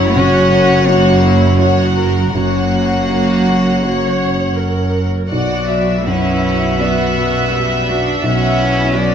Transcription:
Already playing: double bass section F#1, felt piano F#2, cello section F#2, cello F#3, viola section E4, french horn section F#4 C#5, violin section C#5 F#5
0.14 felt piano C#3, cello C#4, viola section F#4, violin section F#5
0.53 viola section F#4
0.88 felt piano F#3 F#4 C#5, cello A#3, viola section F#4
1.24 viola section E4
1.60 cello F#3, viola section F#4, violin section C#5 F#5
1.98 violin section A#4
2.33 double bass section F#1, cello section F#2, felt piano F#2, cello A#3, french horn section F#4 C#5, viola section F#4, violin section C#5 F#5
3.09 felt piano F#3, viola section F#4
3.82 felt piano F#3 F#4 C#5, viola section C#5
4.58 viola section A#4
5.29 double bass section B1, felt piano B1, cello F#3, french horn section F#4 B4, violin section D5 F#5
5.33 cello section B2, viola section F#4
5.67 violin section E5
6.06 felt piano F#2, cello C#4, viola section E4, violin section E5 F#5
6.79 felt piano F#3 F#4 D5, cello B3, viola section F#4
7.19 viola section F#4
7.55 viola section G3
7.89 cello D4, viola section F#4
8.21 felt piano B1, double bass section B1, cello section B2, cello C#4, french horn section F#4 B4, viola section F#4, violin section F#5
8.60 viola section E4
8.94 felt piano F#3, viola section F#4, violin section D5 E5

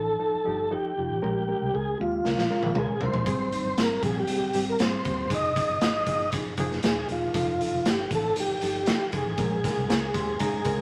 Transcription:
Already playing: fingered electric bass A1, reed electric piano F3 D#4 A4, tonewheel organ A4
0.20 reed electric piano F3 D#4 A4
0.34 muted fingered electric bass stroke
0.44 fingered electric bass G1, reed electric piano F3 D#4 G4
0.71 reed electric piano F3 D#4 A4, tonewheel organ G4
0.97 fingered electric bass F1, reed electric piano F3 D#4 F4
1.10 fingered electric bass A1
1.22 fingered electric bass A#1, reed electric piano G#3 C#4 A#4, tonewheel organ G4
1.48 reed electric piano G#3 C#4 A#4
1.62 fingered electric bass C2
1.73 fingered electric bass C#2, reed electric piano G#3 C#4 A#4, tonewheel organ G#4
2.00 fingered electric bass D#2, reed electric piano G#3 C#4 G4, tonewheel organ F4
2.24 fingered electric bass C#2, reed electric piano G#3 C#4 A#4, snare
2.38 fingered electric bass A#1, snare
2.50 reed electric piano G#3 C#4 A#4
2.63 fingered electric bass A#1, high tom
2.75 fingered electric bass C#2, reed electric piano G#3 C#4 A#4, tonewheel organ G#4, mid tom
3.01 fingered electric bass C2, reed electric piano G#3 C#4 A#4, tonewheel organ C5, floor tom
3.14 fingered electric bass A#1, floor tom
3.26 fingered electric bass G#1, reed electric piano G3 C4 G#4, kick, closed hi-hat
3.52 reed electric piano G3 C4 D#4, closed hi-hat
3.64 fingered electric bass G1
3.77 fingered electric bass G#1, reed electric piano G3 C4 G#4, tonewheel organ A#4, snare, closed hi-hat
4.03 fingered electric bass A#1, reed electric piano G3 C4 G#4, tonewheel organ G#4, kick, closed hi-hat
4.19 tonewheel organ G4
4.27 reed electric piano G3 C4 G#4, closed hi-hat
4.41 muted fingered electric bass stroke
4.53 fingered electric bass G#1, reed electric piano G3 C4 G4, closed hi-hat
4.69 tonewheel organ A#4
4.79 fingered electric bass G#2, reed electric piano G3 C4 G#4, tonewheel organ C5, snare, closed hi-hat
5.04 fingered electric bass D#2, reed electric piano G3 C4 G4, kick, closed hi-hat
5.30 fingered electric bass F1, reed electric piano F3 D#4 G#4, kick, closed hi-hat
5.35 tonewheel organ D#5
5.56 reed electric piano F3 D#4 G#4, kick, closed hi-hat
5.69 fingered electric bass G1
5.81 fingered electric bass G#1, reed electric piano F3 D#4 G#4, snare, closed hi-hat
6.06 fingered electric bass G1, reed electric piano F3 D#4 G#4, kick, closed hi-hat
6.32 reed electric piano F3 D#4 G#4, kick, closed hi-hat
6.46 muted fingered electric bass stroke
6.57 fingered electric bass F1, reed electric piano F3 D#4 G#4, kick, closed hi-hat
6.71 snare
6.83 fingered electric bass D#1, reed electric piano F3 D#4 G#4, tonewheel organ G#4, snare, closed hi-hat
7.09 fingered electric bass E1, reed electric piano F3 D#4 G#4, tonewheel organ F4, closed hi-hat
7.34 fingered electric bass F1, reed electric piano F3 D#4 A4, kick, closed hi-hat
7.60 reed electric piano F3 D#4 A4, closed hi-hat
7.73 fingered electric bass F1
7.85 fingered electric bass G1, reed electric piano F3 D#4 A4, tonewheel organ G4, snare, closed hi-hat
8.11 fingered electric bass A1, reed electric piano F3 D#4 A4, kick, closed hi-hat
8.15 tonewheel organ A4
8.36 reed electric piano F3 D#4 A4, closed hi-hat
8.40 tonewheel organ G4
8.50 muted fingered electric bass stroke
8.61 fingered electric bass G1, reed electric piano F3 D#4 A4, closed hi-hat
8.86 reed electric piano F3 D#4 A4, snare, closed hi-hat
9.12 fingered electric bass F1, reed electric piano F3 D#4 A4, tonewheel organ G#4, kick, closed hi-hat
9.26 fingered electric bass A1
9.38 fingered electric bass A#1, reed electric piano G#3 C#4 A#4, kick, closed hi-hat
9.63 reed electric piano G#3 C#4 A#4, kick, snare, closed hi-hat
9.77 fingered electric bass C2
9.89 fingered electric bass C#2, reed electric piano G#3 C#4 A#4, snare, closed hi-hat
10.13 fingered electric bass D#2, reed electric piano G#3 C#4 G4 C6, kick, closed hi-hat
10.39 reed electric piano G#3 C#4 D#4 A#5, kick, closed hi-hat
10.53 muted fingered electric bass stroke
10.65 fingered electric bass C#2, reed electric piano G#3 C#4 A#4 G#5, kick, closed hi-hat

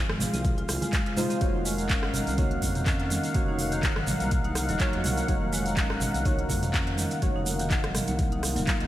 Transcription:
Already playing: synth stab G#3 D#4 F4 C5, analog synth pad F4 G#4 F5
0.09 analog synth bass G#1, marimba G#3, cross-stick, muted conga
0.20 mid tom, open hi-hat, high conga, shaker
0.33 analog synth bass C2, marimba C4, closed hi-hat, shaker
0.44 kick, closed hi-hat, mid tom, muted conga, shaker
0.58 marimba F4, closed hi-hat
0.69 analog synth bass C2, cross-stick, open hi-hat, shaker
0.81 marimba G#3, closed hi-hat, high conga, low conga, shaker
0.93 marimba G#3, kick, clap, closed hi-hat, muted conga, high conga, shaker
1.06 marimba C3, closed hi-hat
1.17 synth stab G#3 D#4 F4 C5, mid tom, open hi-hat, high conga, low conga, shaker
1.30 marimba C4, closed hi-hat, muted conga, shaker
1.41 analog synth bass F1, synth stab A#3 D#4 F#4 C#5, analog synth pad D#4 A#4 F#5, kick, closed hi-hat, high conga, low conga, shaker
1.65 marimba G#3, open hi-hat, muted conga, shaker
1.78 closed hi-hat, shaker
1.89 marimba C#4, kick, clap, closed hi-hat, shaker
2.03 analog synth bass G#1, cross-stick, muted conga
2.14 marimba D#3, mid tom, open hi-hat, high conga, shaker
2.27 analog synth bass C2, closed hi-hat, shaker
2.38 marimba C#3, synth stab A#3 D#4 F#4 C#5, kick, closed hi-hat, muted conga, low conga, shaker
2.51 closed hi-hat
2.62 analog synth bass F2, marimba A#3, kick, open hi-hat, high conga, low conga, shaker
2.75 marimba D#3, closed hi-hat, mid tom, shaker
2.86 marimba C#4, kick, clap, closed hi-hat, muted conga, shaker
2.99 closed hi-hat
3.10 marimba D#3, open hi-hat, high conga, shaker
3.24 closed hi-hat, muted conga, shaker
3.34 analog synth bass F1, marimba C#3, synth stab A#3 D#4 F#4 C#5, kick, closed hi-hat, high conga, low conga, shaker
3.48 marimba D#4
3.59 open hi-hat, muted conga, shaker
3.72 marimba D#3, closed hi-hat, shaker
3.83 kick, clap, closed hi-hat, shaker
3.96 analog synth bass G#1, marimba F#3, cross-stick, muted conga
4.07 mid tom, open hi-hat, high conga, shaker
4.20 analog synth bass C2, marimba A#3, closed hi-hat, shaker
4.31 kick, closed hi-hat, mid tom, muted conga, shaker
4.44 marimba D#4, closed hi-hat
4.55 cross-stick, open hi-hat, shaker
4.69 analog synth bass D#1, marimba F#3, closed hi-hat, high conga, low conga, shaker
4.80 marimba F#3, synth stab A#3 D#4 F#4 C#5, kick, clap, closed hi-hat, muted conga, high conga, shaker
4.93 analog synth bass F2, marimba A#2, closed hi-hat
5.04 analog synth bass C2, mid tom, open hi-hat, high conga, low conga, shaker
5.17 marimba A#3, closed hi-hat, muted conga, shaker
5.28 analog synth bass F1, marimba D#3, synth stab A#3 D#4 F#4 C#5, kick, closed hi-hat, high conga, low conga, shaker
5.53 marimba G#3, open hi-hat, muted conga, shaker
5.66 closed hi-hat, shaker
5.77 marimba C#4, kick, clap, closed hi-hat, shaker
5.90 analog synth bass G#1, cross-stick, muted conga
6.01 marimba D#3, mid tom, open hi-hat, high conga, shaker
6.14 analog synth bass C2, closed hi-hat, shaker
6.25 marimba C#3, synth stab A#3 D#4 F#4 C#5, kick, closed hi-hat, muted conga, low conga, shaker
6.39 closed hi-hat
6.49 analog synth bass F2, marimba A#3, kick, open hi-hat, high conga, low conga, shaker
6.63 marimba D#3, closed hi-hat, mid tom, shaker
6.74 marimba C#4, kick, clap, closed hi-hat, muted conga, shaker
6.87 closed hi-hat
6.98 marimba D#3, open hi-hat, high conga, shaker
7.11 closed hi-hat, muted conga, shaker
7.22 analog synth bass F1, marimba C#3, synth stab A#3 D#4 F#4 C#5, kick, closed hi-hat, high conga, low conga, shaker
7.36 marimba D#4
7.46 open hi-hat, muted conga, shaker
7.59 marimba D#3, closed hi-hat, shaker
7.71 kick, clap, closed hi-hat, shaker
7.84 analog synth bass G#1, marimba F#3, cross-stick, closed hi-hat, muted conga
7.95 cross-stick, mid tom, open hi-hat, high conga, shaker
8.07 analog synth bass C2, marimba A#3, closed hi-hat, shaker
8.19 kick, closed hi-hat, mid tom, swell, muted conga, shaker
8.32 marimba D#4, closed hi-hat
8.43 cross-stick, open hi-hat, shaker
8.56 analog synth bass D#1, marimba F#3, closed hi-hat, high conga, low conga, shaker
8.67 marimba A#3, kick, clap, closed hi-hat, muted conga, high conga, shaker
8.80 analog synth bass F2, marimba D#3, closed hi-hat

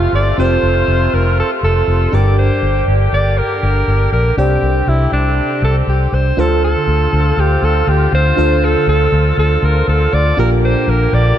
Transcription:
Already playing: woodwind section C3 A3 F4, fm electric piano C4 F4 A4 C5, alto saxophone F4
0.13 fingered electric bass G1, alto saxophone D5
0.38 fingered electric bass F1, fm electric piano C4 F4 G4 C5, alto saxophone C5
0.45 fm electric piano A4
0.63 fingered electric bass F1
0.88 fingered electric bass F1
1.13 fingered electric bass F1, alto saxophone A#4
1.40 alto saxophone A4
1.63 fingered electric bass F1, alto saxophone A4
1.88 fingered electric bass F1
2.12 fingered electric bass G1, fm electric piano G2 D4 G4 A#4 D5, woodwind section D3 A#3 G4, alto saxophone D5
2.39 alto saxophone C5
2.63 fingered electric bass G1
2.88 fingered electric bass G1
3.12 fingered electric bass G1, alto saxophone D5
3.38 alto saxophone A#4
3.63 fingered electric bass G1
3.88 fingered electric bass G1
4.12 fingered electric bass A#1, alto saxophone A#4
4.37 fingered electric bass C2, fm electric piano C3 D4 G4 C5 D5, woodwind section C4 G4, alto saxophone G4
4.62 fingered electric bass C2
4.87 fingered electric bass C2, alto saxophone E4
5.12 fingered electric bass C2, alto saxophone D4
5.62 fingered electric bass C2, alto saxophone A4
5.87 fingered electric bass C2, alto saxophone G4
6.13 fingered electric bass C2, alto saxophone C5
6.37 fingered electric bass D2, fm electric piano D3 D4 F4 A4 C5, woodwind section D3 C4 F4, alto saxophone A4
6.64 alto saxophone A4
6.88 fingered electric bass D2
7.13 fingered electric bass D2
7.37 fingered electric bass D2, alto saxophone G4
7.62 fingered electric bass D2, alto saxophone A4
7.87 fingered electric bass D2, alto saxophone G4
8.13 fingered electric bass D2, alto saxophone C5
8.36 fingered electric bass D2, fm electric piano D3 D4 F4 A4 C5
8.65 alto saxophone A4
8.88 fingered electric bass D2, alto saxophone A4
9.12 fingered electric bass D2
9.38 fingered electric bass D2, alto saxophone A4
9.63 fingered electric bass D2, alto saxophone A#4
9.88 fingered electric bass D2, alto saxophone A4
10.13 fingered electric bass D2, alto saxophone D5
10.37 fingered electric bass A#1, fm electric piano A#2 D4 F4 G4 A#4, woodwind section A#3 G4, alto saxophone A#4
10.65 alto saxophone C5
10.88 fingered electric bass A#1, alto saxophone A#4
11.13 fingered electric bass A#1, alto saxophone D5

